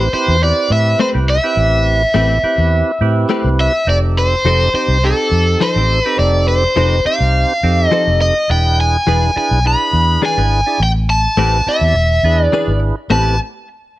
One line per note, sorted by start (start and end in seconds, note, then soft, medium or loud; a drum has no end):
0.00 0.13 C5 medium
0.13 0.37 C4 medium
0.13 0.37 E4 medium
0.13 0.37 G4 medium
0.13 0.38 B4 medium
0.13 0.43 C5 medium
0.13 muted fingered electric bass stroke soft
0.28 0.51 E2 medium
0.42 1.01 C4 medium
0.42 1.01 E4 medium
0.42 1.01 G4 medium
0.42 1.01 B4 medium
0.42 0.72 D5 medium
0.70 0.93 A2 medium
0.70 1.00 E5 medium
0.99 1.18 A3 medium
0.99 1.18 C4 medium
0.99 1.18 G4 medium
0.99 1.18 B4 medium
0.99 1.08 C5 medium
1.14 1.38 C2 medium
1.14 1.38 C4 medium
1.14 1.38 E4 medium
1.14 1.38 G4 medium
1.14 1.38 B4 medium
1.30 3.27 E5 medium
1.43 2.02 C4 medium
1.43 2.02 E4 medium
1.43 2.02 G4 medium
1.43 2.03 B4 medium
1.57 2.03 A1 loud
2.14 2.38 A1 medium
2.14 2.33 A3 medium
2.14 2.38 C4 loud
2.14 2.33 C4 loud
2.14 2.39 E4 medium
2.14 2.39 G4 medium
2.14 2.33 G4 medium
2.14 2.39 A4 loud
2.14 2.34 B4 medium
2.43 2.91 C4 medium
2.43 2.91 E4 medium
2.43 2.92 G4 medium
2.43 2.92 B4 loud
2.43 muted fingered electric bass stroke soft
2.58 2.81 E2 medium
3.01 3.24 A2 medium
3.01 3.72 C4 medium
3.01 3.72 E4 medium
3.01 3.73 G4 medium
3.01 3.73 B4 loud
3.29 3.48 A3 medium
3.29 3.48 C4 medium
3.29 3.49 G4 medium
3.29 3.49 B4 loud
3.44 3.68 C2 medium
3.61 3.89 E5 medium
3.87 4.33 F1 medium
3.87 4.35 C4 medium
3.87 4.35 D#4 medium
3.87 4.35 G4 medium
3.87 4.36 A4 medium
3.87 3.97 D5 medium
4.18 4.74 C5 medium
4.45 4.68 F1 medium
4.45 4.64 F3 medium
4.45 4.69 C4 medium
4.45 4.64 D#4 medium
4.45 4.70 D#4 medium
4.45 4.70 G4 medium
4.45 4.64 A4 medium
4.45 4.70 A4 medium
4.45 4.64 C5 medium
4.74 4.98 C4 medium
4.74 4.98 D#4 medium
4.74 4.98 G4 medium
4.74 4.99 C5 medium
4.74 5.05 C5 medium
4.74 muted fingered electric bass stroke soft
4.88 5.12 C2 medium
5.03 5.62 C4 medium
5.03 5.62 D#4 medium
5.03 5.62 G4 medium
5.03 5.62 A4 medium
5.03 5.63 A4 medium
5.31 5.55 F2 medium
5.60 5.79 F3 medium
5.60 5.79 D#4 medium
5.60 5.79 A4 medium
5.60 5.80 C5 loud
5.60 6.04 C5 medium
5.76 5.99 A1 medium
5.76 5.99 C4 medium
5.76 6.00 D#4 medium
5.76 6.00 G4 medium
5.76 6.00 A4 medium
6.04 6.64 C4 medium
6.04 6.64 D#4 medium
6.04 6.64 G4 medium
6.04 6.64 A4 medium
6.04 6.19 B4 medium
6.19 6.64 F1 loud
6.19 6.48 D5 medium
6.48 7.06 C5 medium
6.76 6.99 F1 medium
6.76 6.94 F3 medium
6.76 7.00 C4 medium
6.76 6.95 D#4 medium
6.76 7.00 D#4 medium
6.76 7.01 G4 medium
6.76 6.95 A4 medium
6.76 7.01 B4 medium
6.76 6.95 C5 medium
7.05 7.53 C4 medium
7.05 7.53 D#4 medium
7.05 7.53 G4 medium
7.05 7.53 C5 medium
7.05 7.88 F5 medium
7.05 muted fingered electric bass stroke soft
7.20 7.43 C2 medium
7.63 7.86 F2 medium
7.63 8.34 C4 medium
7.63 8.34 D#4 medium
7.63 8.34 G4 medium
7.63 8.35 A4 medium
7.88 8.10 F3 loud
7.88 8.21 D#5 medium
7.92 8.10 D#4 loud
7.92 8.10 A4 loud
7.92 8.10 C5 loud
8.07 8.30 F1 medium
8.22 8.51 D#5 medium
8.49 8.95 E1 medium
8.49 8.97 D4 medium
8.49 8.97 E4 medium
8.49 8.97 G#4 medium
8.49 8.97 B4 medium
8.49 8.80 G5 medium
8.80 9.37 G#5 loud
9.07 9.30 E1 medium
9.07 9.25 E3 medium
9.07 9.31 D4 medium
9.07 9.25 D4 medium
9.07 9.31 E4 medium
9.07 9.31 G#4 medium
9.07 9.26 G#4 medium
9.07 9.31 B4 medium
9.07 9.26 B4 medium
9.36 9.60 D4 medium
9.36 9.60 E4 medium
9.36 9.60 G#4 medium
9.36 9.60 B4 medium
9.36 9.67 G#5 loud
9.36 muted fingered electric bass stroke soft
9.51 9.74 B1 medium
9.65 10.23 D4 medium
9.65 10.23 E4 medium
9.65 10.24 G#4 medium
9.65 10.24 B4 medium
9.65 10.20 B5 medium
9.93 10.16 E2 medium
10.22 10.40 E3 medium
10.22 10.40 D4 medium
10.22 10.41 G#4 medium
10.22 10.41 B4 medium
10.22 10.83 G#5 medium
10.37 10.60 G#1 medium
10.37 10.61 D4 medium
10.37 10.61 E4 medium
10.37 10.61 G#4 medium
10.37 10.61 B4 medium
10.66 10.80 D4 medium
10.66 10.80 E4 medium
10.66 10.80 G#4 medium
10.66 10.80 D5 medium
10.80 11.25 A1 loud
10.80 10.90 G5 loud
11.10 11.69 A5 loud
11.37 11.60 A1 medium
11.37 11.56 A3 medium
11.37 11.61 C4 medium
11.37 11.56 C4 medium
11.37 11.61 E4 medium
11.37 11.62 G4 medium
11.37 11.56 G4 medium
11.37 11.62 B4 medium
11.37 11.56 B4 medium
11.67 11.95 C4 medium
11.67 11.96 E4 medium
11.67 11.96 G4 medium
11.67 11.96 D5 medium
11.67 12.45 E5 medium
11.67 muted fingered electric bass stroke soft
11.81 11.92 E2 medium
11.94 12.18 E1 loud
12.23 12.46 E2 medium
12.23 12.95 D4 medium
12.23 12.95 E4 medium
12.23 12.96 G#4 medium
12.23 12.96 B4 medium
12.45 12.79 D5 medium
12.52 12.71 E3 medium
12.52 12.71 D4 loud
12.52 12.71 G#4 loud
12.52 12.72 B4 loud
12.68 12.91 G#1 medium
13.10 13.37 A1 loud
13.10 13.34 A3 medium
13.10 13.34 C4 medium
13.10 13.38 C4 medium
13.10 13.37 E4 medium
13.10 13.37 G4 medium
13.10 13.35 G4 medium
13.10 13.37 B4 medium
13.10 13.35 B4 medium
13.10 13.38 A5 medium